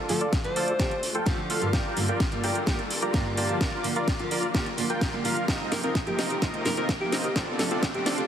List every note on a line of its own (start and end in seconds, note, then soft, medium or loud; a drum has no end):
0.00 1.71 A3 medium
0.00 5.44 D4 medium
0.00 0.11 F4 medium
0.00 5.44 F4 medium
0.00 0.11 A4 medium
0.00 0.11 D5 loud
0.00 riser medium
0.09 0.26 D2 medium
0.09 0.19 D3 medium
0.09 0.20 F3 medium
0.09 0.20 A3 medium
0.09 0.20 F4 medium
0.09 0.26 A4 medium
0.09 open hi-hat loud
0.21 0.36 F4 loud
0.21 0.36 A4 medium
0.21 0.36 D5 loud
0.21 closed hi-hat medium
0.33 0.41 D2 loud
0.33 kick loud
0.33 snare medium
0.33 closed hi-hat medium
0.44 0.61 D3 medium
0.44 0.61 F3 medium
0.44 0.61 A3 medium
0.44 0.61 F4 medium
0.44 1.10 C5 medium
0.44 closed hi-hat soft
0.56 0.73 D2 medium
0.56 0.72 F4 medium
0.56 0.72 A4 medium
0.56 0.72 D5 medium
0.56 open hi-hat loud
0.68 closed hi-hat soft
0.79 0.88 D2 medium
0.79 0.90 D3 medium
0.79 0.90 F3 medium
0.79 0.90 A3 medium
0.79 0.95 F4 medium
0.79 0.90 G4 medium
0.79 0.95 A4 medium
0.79 0.95 D5 medium
0.79 kick loud
0.79 snare medium
0.79 closed hi-hat medium
0.91 1.00 D2 medium
0.91 closed hi-hat soft
1.03 1.20 D2 medium
1.03 open hi-hat loud
1.15 1.40 F4 medium
1.15 1.40 A4 medium
1.15 1.40 G5 medium
1.15 closed hi-hat soft
1.26 1.43 D2 loud
1.26 1.58 D3 medium
1.26 1.59 F3 medium
1.26 1.59 A3 medium
1.26 1.59 F4 loud
1.26 kick loud
1.26 snare medium
1.26 closed hi-hat medium
1.50 1.58 D2 medium
1.50 1.70 F4 medium
1.50 1.70 A4 medium
1.50 1.70 F5 loud
1.50 open hi-hat loud
1.61 1.78 G2 medium
1.61 1.78 D3 medium
1.61 1.78 G3 medium
1.61 1.78 A#3 medium
1.61 1.79 F4 medium
1.61 closed hi-hat soft
1.73 1.90 G1 loud
1.73 3.59 G3 medium
1.73 1.98 F4 medium
1.73 1.98 G4 medium
1.73 3.59 A4 medium
1.73 1.98 A#4 medium
1.73 3.59 A#4 medium
1.73 1.98 D5 medium
1.73 1.98 G5 loud
1.73 kick loud
1.73 snare medium
1.73 closed hi-hat medium
1.96 2.13 G1 medium
1.96 2.07 G2 medium
1.96 2.07 D3 medium
1.96 2.07 G3 medium
1.96 2.07 A#3 medium
1.96 2.08 F4 medium
1.96 open hi-hat loud
2.08 2.24 F4 loud
2.08 2.24 G4 medium
2.08 2.24 A#4 medium
2.08 2.24 D5 medium
2.08 2.24 G5 loud
2.08 closed hi-hat soft
2.20 kick loud
2.20 snare medium
2.20 closed hi-hat medium
2.31 2.48 G2 medium
2.31 2.49 D3 medium
2.31 2.49 G3 medium
2.31 2.49 A#3 medium
2.31 2.49 F4 medium
2.31 closed hi-hat soft
2.44 2.60 G1 medium
2.44 2.59 F4 medium
2.44 2.59 G4 medium
2.44 2.59 A#4 medium
2.44 2.59 D5 medium
2.44 2.59 G5 loud
2.44 open hi-hat loud
2.55 closed hi-hat soft
2.66 2.77 G2 medium
2.66 2.77 D3 medium
2.66 2.78 G3 medium
2.66 2.78 A#3 medium
2.66 2.83 F4 medium
2.66 2.83 G4 medium
2.66 2.78 G4 loud
2.66 2.83 A#4 medium
2.66 2.83 D5 medium
2.66 2.83 G5 medium
2.66 kick loud
2.66 snare medium
2.66 closed hi-hat medium
2.79 2.87 G1 medium
2.79 closed hi-hat soft
2.90 3.07 G1 medium
2.90 open hi-hat loud
3.02 3.27 F4 medium
3.02 3.27 G4 medium
3.02 3.27 A#4 medium
3.02 3.27 D5 medium
3.02 3.27 A#5 medium
3.02 closed hi-hat soft
3.13 3.31 G1 loud
3.13 3.46 G2 medium
3.13 3.46 D3 medium
3.13 3.46 G3 medium
3.13 3.46 A#3 medium
3.13 3.47 F4 loud
3.13 kick loud
3.13 snare medium
3.13 closed hi-hat medium
3.37 3.46 G1 medium
3.37 3.58 F4 medium
3.37 3.58 G4 medium
3.37 3.58 A#4 medium
3.37 3.58 D5 medium
3.37 3.58 A5 loud
3.37 open hi-hat loud
3.48 3.66 D3 medium
3.48 3.66 F3 medium
3.48 3.66 A#3 medium
3.48 3.66 F4 medium
3.48 closed hi-hat soft
3.61 3.77 A#1 loud
3.61 5.46 A#3 medium
3.61 3.86 F4 medium
3.61 3.86 A#4 medium
3.61 3.86 D5 loud
3.61 kick loud
3.61 snare medium
3.61 closed hi-hat medium
3.83 4.01 A#1 loud
3.83 3.94 D3 medium
3.83 3.95 F3 medium
3.83 3.95 A#3 medium
3.83 3.95 F4 medium
3.83 open hi-hat loud
3.96 4.12 F4 medium
3.96 4.12 A#4 medium
3.96 4.12 D5 loud
3.96 closed hi-hat soft
4.08 kick loud
4.08 snare medium
4.08 closed hi-hat medium
4.19 4.36 D3 medium
4.19 4.36 F3 medium
4.19 4.36 A#3 medium
4.19 4.36 F4 medium
4.19 closed hi-hat soft
4.31 4.48 A#1 medium
4.31 4.47 F4 medium
4.31 4.47 A#4 medium
4.31 4.47 D5 medium
4.31 open hi-hat loud
4.43 closed hi-hat soft
4.54 4.65 D3 medium
4.54 4.65 F3 medium
4.54 4.65 A#3 medium
4.54 4.70 F4 medium
4.54 4.65 G4 medium
4.54 4.70 A#4 medium
4.54 4.70 D5 medium
4.54 kick loud
4.54 snare medium
4.54 closed hi-hat medium
4.66 4.75 A#1 medium
4.66 closed hi-hat soft
4.77 4.95 A#1 medium
4.77 4.88 D3 loud
4.77 4.88 F3 medium
4.77 4.89 A#3 loud
4.77 4.89 F4 medium
4.77 open hi-hat loud
4.90 5.15 F4 medium
4.90 5.15 A#4 medium
4.90 5.15 G5 medium
4.90 closed hi-hat soft
5.01 5.18 A#1 loud
5.01 kick loud
5.01 snare medium
5.01 closed hi-hat medium
5.12 5.22 D3 medium
5.12 5.22 F3 medium
5.12 5.22 A#3 medium
5.12 5.22 F4 medium
5.24 5.33 A#1 medium
5.24 5.35 D3 medium
5.24 5.35 F3 medium
5.24 5.35 A#3 medium
5.24 5.45 F4 medium
5.24 5.36 F4 medium
5.24 5.45 A#4 medium
5.24 5.45 F5 medium
5.24 open hi-hat loud
5.48 5.65 F2 loud
5.48 7.34 F3 medium
5.48 7.34 C4 medium
5.48 5.73 C4 medium
5.48 5.73 D#4 medium
5.48 7.34 D#4 medium
5.48 5.73 F4 medium
5.48 7.34 G4 medium
5.48 7.34 A#4 medium
5.48 5.73 A#4 medium
5.48 5.73 D#5 loud
5.48 kick loud
5.48 snare medium
5.48 closed hi-hat medium
5.71 5.88 F2 loud
5.71 5.82 C3 medium
5.71 5.82 F3 medium
5.71 5.82 A#3 medium
5.71 5.82 D#4 medium
5.71 5.79 A#4 medium
5.71 snare medium
5.71 open hi-hat loud
5.83 5.99 C4 medium
5.83 5.99 D#4 medium
5.83 5.99 F4 medium
5.83 5.91 A#4 medium
5.83 5.99 A#4 medium
5.83 5.99 D#5 loud
5.83 closed hi-hat medium
5.95 6.03 F2 loud
5.95 kick loud
5.95 snare medium
5.95 closed hi-hat medium
6.06 6.23 C3 medium
6.06 6.24 F3 medium
6.06 6.24 A#3 medium
6.06 6.24 D#4 medium
6.06 6.24 G4 medium
6.06 closed hi-hat soft
6.19 6.35 F2 loud
6.19 6.34 C4 medium
6.19 6.34 D#4 medium
6.19 6.34 F4 medium
6.19 6.34 A#4 medium
6.19 6.34 D#5 medium
6.19 snare medium
6.19 open hi-hat loud
6.30 6.40 G4 medium
6.30 closed hi-hat soft
6.42 6.50 F2 loud
6.42 6.67 C4 medium
6.42 6.67 D#4 medium
6.42 6.67 F4 medium
6.42 6.67 A#4 medium
6.42 6.67 D#5 loud
6.42 kick loud
6.42 snare medium
6.42 closed hi-hat medium
6.54 6.62 F2 medium
6.54 closed hi-hat soft
6.65 6.82 F2 medium
6.65 6.76 C3 medium
6.65 6.76 F3 medium
6.65 6.76 A#3 medium
6.65 6.76 D#4 medium
6.65 6.73 A#4 medium
6.65 snare medium
6.65 open hi-hat loud
6.77 6.93 C4 medium
6.77 6.93 D#4 medium
6.77 6.93 F4 medium
6.77 6.93 A#4 medium
6.77 6.85 A#4 medium
6.77 6.93 D#5 loud
6.77 closed hi-hat soft
6.89 7.06 F2 loud
6.89 kick loud
6.89 snare medium
6.89 closed hi-hat medium
7.00 7.17 C3 medium
7.00 7.17 F3 medium
7.00 7.18 A#3 medium
7.00 7.18 D#4 medium
7.00 7.18 G4 medium
7.12 7.21 F2 medium
7.12 7.28 C4 medium
7.12 7.28 D#4 medium
7.12 7.28 F4 medium
7.12 7.28 A#4 medium
7.12 7.28 D#5 medium
7.12 snare medium
7.12 open hi-hat loud
7.24 7.34 G4 medium
7.24 closed hi-hat soft
7.36 7.52 D2 loud
7.36 8.27 A3 medium
7.36 7.61 C4 medium
7.36 7.61 D4 medium
7.36 8.27 D4 medium
7.36 7.61 F4 medium
7.36 8.27 F4 medium
7.36 7.61 A4 medium
7.36 7.61 D5 loud
7.36 kick loud
7.36 snare medium
7.36 closed hi-hat medium
7.59 7.76 D2 medium
7.59 7.69 C3 medium
7.59 7.70 F3 medium
7.59 7.70 A3 medium
7.59 7.70 D4 medium
7.59 7.67 A4 medium
7.59 snare medium
7.59 open hi-hat loud
7.71 7.86 C4 medium
7.71 7.86 D4 medium
7.71 7.86 F4 medium
7.71 7.86 A4 medium
7.71 7.78 A4 medium
7.71 7.86 D5 loud
7.71 closed hi-hat medium
7.83 7.91 D2 loud
7.83 kick loud
7.83 snare medium
7.83 closed hi-hat medium
7.94 8.11 C3 medium
7.94 8.11 F3 medium
7.94 8.11 A3 medium
7.94 8.11 D4 medium
7.94 8.11 G4 medium
7.94 closed hi-hat soft
8.06 8.23 D2 loud
8.06 8.22 C4 medium
8.06 8.22 D4 medium
8.06 8.22 F4 medium
8.06 8.22 A4 medium
8.06 8.22 D5 medium
8.06 snare medium
8.06 open hi-hat loud
8.18 8.27 G4 medium
8.18 closed hi-hat soft